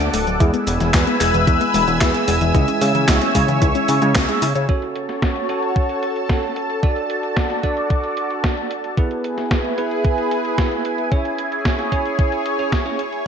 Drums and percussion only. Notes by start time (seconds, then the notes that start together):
0.00 closed hi-hat, cabasa
0.14 open hi-hat, cabasa
0.27 closed hi-hat, cabasa
0.40 kick, closed hi-hat, cabasa
0.54 closed hi-hat, cabasa
0.67 open hi-hat, cabasa
0.80 snare, closed hi-hat, cabasa
0.94 kick, snare, clap, closed hi-hat, cabasa
1.07 closed hi-hat
1.21 clap, open hi-hat, cabasa
1.34 closed hi-hat, cabasa
1.47 kick, closed hi-hat, cabasa
1.61 closed hi-hat, cabasa
1.74 open hi-hat, cabasa
1.88 closed hi-hat, cabasa
2.01 kick, snare, clap, closed hi-hat, cabasa
2.14 closed hi-hat, cabasa
2.28 open hi-hat, cabasa
2.41 closed hi-hat, cabasa
2.55 kick, closed hi-hat, cabasa
2.68 closed hi-hat, cabasa
2.81 open hi-hat, cabasa
2.95 closed hi-hat, cabasa
3.08 kick, snare, clap, closed hi-hat, cabasa
3.22 snare, closed hi-hat, cabasa
3.35 kick, open hi-hat, cabasa
3.48 closed hi-hat, cabasa
3.62 kick, closed hi-hat, cabasa
3.75 closed hi-hat, cabasa
3.88 open hi-hat, cabasa
4.02 closed hi-hat, cabasa
4.15 kick, snare, clap, closed hi-hat, cabasa
4.29 closed hi-hat, cabasa
4.42 open hi-hat, cabasa
4.55 closed hi-hat, cabasa
4.69 kick, closed hi-hat
4.82 closed hi-hat
4.96 closed hi-hat
5.09 snare, closed hi-hat
5.22 kick, snare, closed hi-hat
5.36 closed hi-hat
5.49 closed hi-hat
5.63 closed hi-hat
5.76 kick, closed hi-hat
5.89 closed hi-hat
6.03 closed hi-hat
6.16 closed hi-hat
6.29 kick, snare, closed hi-hat
6.43 closed hi-hat
6.56 closed hi-hat
6.70 closed hi-hat
6.83 kick, closed hi-hat
6.96 closed hi-hat
7.10 closed hi-hat
7.23 closed hi-hat
7.37 kick, snare, closed hi-hat
7.50 snare, closed hi-hat
7.63 kick, closed hi-hat
7.77 closed hi-hat
7.90 kick, closed hi-hat
8.04 closed hi-hat
8.17 closed hi-hat
8.30 closed hi-hat
8.44 kick, snare, closed hi-hat
8.57 closed hi-hat
8.71 closed hi-hat
8.84 closed hi-hat
8.97 kick, closed hi-hat
9.11 closed hi-hat
9.24 closed hi-hat
9.38 snare, closed hi-hat
9.51 kick, snare, closed hi-hat
9.65 closed hi-hat
9.78 closed hi-hat
9.91 closed hi-hat
10.05 kick, closed hi-hat
10.18 closed hi-hat
10.31 closed hi-hat
10.45 closed hi-hat
10.58 kick, snare, closed hi-hat
10.71 closed hi-hat
10.85 closed hi-hat
10.98 closed hi-hat
11.12 kick, closed hi-hat
11.25 closed hi-hat
11.38 closed hi-hat
11.52 closed hi-hat
11.65 kick, snare, closed hi-hat
11.79 snare, closed hi-hat
11.92 kick, closed hi-hat
12.06 closed hi-hat
12.19 kick, closed hi-hat
12.32 closed hi-hat
12.46 closed hi-hat
12.59 closed hi-hat
12.72 kick, snare, closed hi-hat
12.86 closed hi-hat
12.99 closed hi-hat
13.13 closed hi-hat